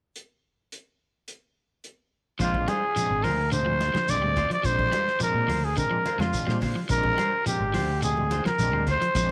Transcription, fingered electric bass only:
0, 0, Header, 1, 3, 480
1, 0, Start_track
1, 0, Tempo, 561798
1, 135, Time_signature, 4, 2, 24, 8
1, 7959, End_track
2, 0, Start_track
2, 0, Title_t, "Fingered electric bass"
2, 0, Program_c, 0, 33
2, 2050, Note_on_c, 0, 34, 84
2, 2268, Note_off_c, 0, 34, 0
2, 2651, Note_on_c, 0, 32, 79
2, 2770, Note_on_c, 0, 38, 83
2, 2782, Note_off_c, 0, 32, 0
2, 3336, Note_off_c, 0, 38, 0
2, 3489, Note_on_c, 0, 34, 65
2, 3599, Note_off_c, 0, 34, 0
2, 3599, Note_on_c, 0, 38, 73
2, 3822, Note_off_c, 0, 38, 0
2, 3967, Note_on_c, 0, 34, 93
2, 4186, Note_off_c, 0, 34, 0
2, 4562, Note_on_c, 0, 46, 68
2, 4674, Note_off_c, 0, 46, 0
2, 4680, Note_on_c, 0, 38, 84
2, 4903, Note_off_c, 0, 38, 0
2, 5284, Note_on_c, 0, 41, 76
2, 5396, Note_off_c, 0, 41, 0
2, 5533, Note_on_c, 0, 46, 72
2, 5751, Note_off_c, 0, 46, 0
2, 5894, Note_on_c, 0, 34, 92
2, 6111, Note_off_c, 0, 34, 0
2, 6495, Note_on_c, 0, 32, 77
2, 6617, Note_on_c, 0, 38, 82
2, 6629, Note_off_c, 0, 32, 0
2, 7183, Note_off_c, 0, 38, 0
2, 7335, Note_on_c, 0, 34, 79
2, 7454, Note_off_c, 0, 34, 0
2, 7454, Note_on_c, 0, 38, 72
2, 7674, Note_off_c, 0, 38, 0
2, 7816, Note_on_c, 0, 34, 107
2, 7959, Note_off_c, 0, 34, 0
2, 7959, End_track
3, 0, Start_track
3, 0, Title_t, "Muted fingered electric bass strokes"
3, 3369, Note_on_c, 9, 29, 29
3, 3454, Note_off_c, 9, 29, 0
3, 3843, Note_on_c, 9, 29, 32
3, 3929, Note_off_c, 9, 29, 0
3, 7217, Note_on_c, 9, 29, 30
3, 7303, Note_off_c, 9, 29, 0
3, 7959, End_track
0, 0, End_of_file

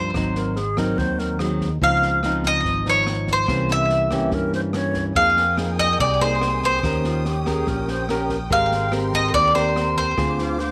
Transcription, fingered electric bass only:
0, 0, Header, 1, 2, 480
1, 0, Start_track
1, 0, Tempo, 418118
1, 165, Time_signature, 4, 2, 24, 8
1, 12300, End_track
2, 0, Start_track
2, 0, Title_t, "Fingered electric bass"
2, 0, Program_c, 0, 33
2, 0, Note_on_c, 0, 43, 78
2, 121, Note_off_c, 0, 43, 0
2, 167, Note_on_c, 0, 32, 94
2, 1080, Note_off_c, 0, 32, 0
2, 1127, Note_on_c, 0, 39, 75
2, 2041, Note_off_c, 0, 39, 0
2, 2083, Note_on_c, 0, 37, 99
2, 2998, Note_off_c, 0, 37, 0
2, 3041, Note_on_c, 0, 32, 82
2, 3958, Note_off_c, 0, 32, 0
2, 3997, Note_on_c, 0, 36, 96
2, 4916, Note_off_c, 0, 36, 0
2, 4955, Note_on_c, 0, 43, 83
2, 5875, Note_off_c, 0, 43, 0
2, 5917, Note_on_c, 0, 41, 99
2, 6836, Note_off_c, 0, 41, 0
2, 6885, Note_on_c, 0, 36, 81
2, 7800, Note_off_c, 0, 36, 0
2, 7843, Note_on_c, 0, 39, 94
2, 8759, Note_off_c, 0, 39, 0
2, 8809, Note_on_c, 0, 34, 81
2, 9722, Note_off_c, 0, 34, 0
2, 9763, Note_on_c, 0, 32, 100
2, 10679, Note_off_c, 0, 32, 0
2, 10722, Note_on_c, 0, 39, 75
2, 11638, Note_off_c, 0, 39, 0
2, 11682, Note_on_c, 0, 38, 101
2, 12300, Note_off_c, 0, 38, 0
2, 12300, End_track
0, 0, End_of_file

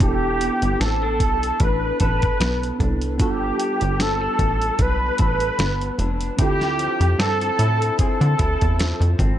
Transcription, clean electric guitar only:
0, 0, Header, 1, 2, 480
1, 0, Start_track
1, 0, Tempo, 798722
1, 1, Time_signature, 4, 2, 24, 8
1, 5642, End_track
2, 0, Start_track
2, 0, Title_t, "Clean electric guitar"
2, 0, Program_c, 0, 27
2, 0, Note_on_c, 0, 69, 61
2, 2, Note_on_c, 0, 52, 76
2, 6, Note_off_c, 0, 69, 0
2, 6, Note_on_c, 0, 69, 60
2, 247, Note_on_c, 0, 59, 51
2, 486, Note_on_c, 0, 60, 50
2, 614, Note_off_c, 0, 60, 0
2, 614, Note_on_c, 0, 62, 52
2, 718, Note_off_c, 0, 69, 0
2, 721, Note_on_c, 0, 69, 62
2, 956, Note_off_c, 0, 62, 0
2, 963, Note_on_c, 0, 62, 59
2, 1199, Note_off_c, 0, 69, 0
2, 1201, Note_on_c, 0, 69, 62
2, 1438, Note_off_c, 0, 59, 0
2, 1440, Note_on_c, 0, 59, 59
2, 1680, Note_off_c, 0, 62, 0
2, 1683, Note_on_c, 0, 62, 52
2, 1920, Note_on_c, 0, 43, 77
2, 1922, Note_off_c, 0, 52, 0
2, 1924, Note_off_c, 0, 69, 0
2, 1924, Note_on_c, 0, 69, 64
2, 2156, Note_off_c, 0, 62, 0
2, 2158, Note_off_c, 0, 59, 0
2, 2158, Note_on_c, 0, 59, 51
2, 2400, Note_on_c, 0, 60, 53
2, 2532, Note_off_c, 0, 60, 0
2, 2532, Note_on_c, 0, 62, 52
2, 2632, Note_off_c, 0, 69, 0
2, 2635, Note_on_c, 0, 69, 63
2, 2869, Note_off_c, 0, 62, 0
2, 2876, Note_on_c, 0, 62, 58
2, 3113, Note_off_c, 0, 69, 0
2, 3116, Note_on_c, 0, 69, 65
2, 3347, Note_off_c, 0, 59, 0
2, 3354, Note_on_c, 0, 59, 52
2, 3595, Note_off_c, 0, 62, 0
2, 3597, Note_on_c, 0, 62, 52
2, 3835, Note_off_c, 0, 62, 0
2, 3836, Note_on_c, 0, 50, 65
2, 3837, Note_on_c, 0, 64, 61
2, 3840, Note_off_c, 0, 43, 0
2, 3890, Note_off_c, 0, 59, 0
2, 4075, Note_on_c, 0, 53, 53
2, 4319, Note_on_c, 0, 60, 52
2, 4559, Note_off_c, 0, 64, 0
2, 4562, Note_on_c, 0, 64, 57
2, 4796, Note_off_c, 0, 60, 0
2, 4799, Note_on_c, 0, 60, 57
2, 5035, Note_off_c, 0, 64, 0
2, 5037, Note_on_c, 0, 64, 63
2, 5219, Note_off_c, 0, 69, 0
2, 5274, Note_off_c, 0, 53, 0
2, 5281, Note_on_c, 0, 53, 55
2, 5519, Note_off_c, 0, 60, 0
2, 5521, Note_on_c, 0, 60, 49
2, 5642, Note_off_c, 0, 50, 0
2, 5642, Note_off_c, 0, 53, 0
2, 5642, Note_off_c, 0, 60, 0
2, 5642, Note_off_c, 0, 64, 0
2, 5642, End_track
0, 0, End_of_file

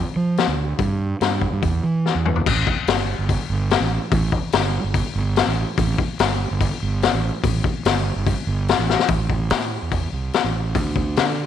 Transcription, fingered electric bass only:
0, 0, Header, 1, 2, 480
1, 0, Start_track
1, 0, Tempo, 415225
1, 912, Time_signature, 4, 2, 24, 8
1, 13254, End_track
2, 0, Start_track
2, 0, Title_t, "Fingered electric bass"
2, 0, Program_c, 0, 33
2, 186, Note_on_c, 0, 53, 78
2, 479, Note_off_c, 0, 53, 0
2, 549, Note_on_c, 0, 38, 70
2, 842, Note_off_c, 0, 38, 0
2, 915, Note_on_c, 0, 43, 89
2, 1305, Note_off_c, 0, 43, 0
2, 1397, Note_on_c, 0, 43, 71
2, 1689, Note_off_c, 0, 43, 0
2, 1763, Note_on_c, 0, 43, 74
2, 1858, Note_off_c, 0, 43, 0
2, 1883, Note_on_c, 0, 40, 91
2, 2076, Note_off_c, 0, 40, 0
2, 2120, Note_on_c, 0, 52, 77
2, 2412, Note_off_c, 0, 52, 0
2, 2483, Note_on_c, 0, 40, 73
2, 2774, Note_off_c, 0, 40, 0
2, 2848, Note_on_c, 0, 33, 97
2, 3041, Note_off_c, 0, 33, 0
2, 3324, Note_on_c, 0, 31, 78
2, 3615, Note_off_c, 0, 31, 0
2, 3683, Note_on_c, 0, 31, 77
2, 3878, Note_off_c, 0, 31, 0
2, 4041, Note_on_c, 0, 31, 87
2, 4334, Note_off_c, 0, 31, 0
2, 4396, Note_on_c, 0, 33, 84
2, 4593, Note_off_c, 0, 33, 0
2, 4764, Note_on_c, 0, 33, 106
2, 4958, Note_off_c, 0, 33, 0
2, 5241, Note_on_c, 0, 31, 76
2, 5533, Note_off_c, 0, 31, 0
2, 5593, Note_on_c, 0, 31, 78
2, 5791, Note_off_c, 0, 31, 0
2, 5957, Note_on_c, 0, 31, 101
2, 6250, Note_off_c, 0, 31, 0
2, 6321, Note_on_c, 0, 33, 77
2, 6515, Note_off_c, 0, 33, 0
2, 6681, Note_on_c, 0, 33, 104
2, 6875, Note_off_c, 0, 33, 0
2, 7163, Note_on_c, 0, 31, 86
2, 7452, Note_off_c, 0, 31, 0
2, 7526, Note_on_c, 0, 31, 78
2, 7717, Note_off_c, 0, 31, 0
2, 7888, Note_on_c, 0, 31, 103
2, 8174, Note_off_c, 0, 31, 0
2, 8242, Note_on_c, 0, 33, 85
2, 8433, Note_off_c, 0, 33, 0
2, 8597, Note_on_c, 0, 33, 101
2, 8790, Note_off_c, 0, 33, 0
2, 9079, Note_on_c, 0, 31, 84
2, 9367, Note_off_c, 0, 31, 0
2, 9433, Note_on_c, 0, 31, 85
2, 9626, Note_off_c, 0, 31, 0
2, 9790, Note_on_c, 0, 31, 97
2, 10081, Note_off_c, 0, 31, 0
2, 10155, Note_on_c, 0, 33, 76
2, 10347, Note_off_c, 0, 33, 0
2, 10508, Note_on_c, 0, 33, 96
2, 10991, Note_off_c, 0, 33, 0
2, 10991, Note_on_c, 0, 45, 82
2, 11281, Note_off_c, 0, 45, 0
2, 11353, Note_on_c, 0, 40, 77
2, 11642, Note_off_c, 0, 40, 0
2, 11705, Note_on_c, 0, 36, 75
2, 11900, Note_off_c, 0, 36, 0
2, 12070, Note_on_c, 0, 33, 93
2, 12429, Note_off_c, 0, 33, 0
2, 12429, Note_on_c, 0, 38, 92
2, 12913, Note_on_c, 0, 50, 75
2, 12930, Note_off_c, 0, 38, 0
2, 13202, Note_off_c, 0, 50, 0
2, 13254, End_track
0, 0, End_of_file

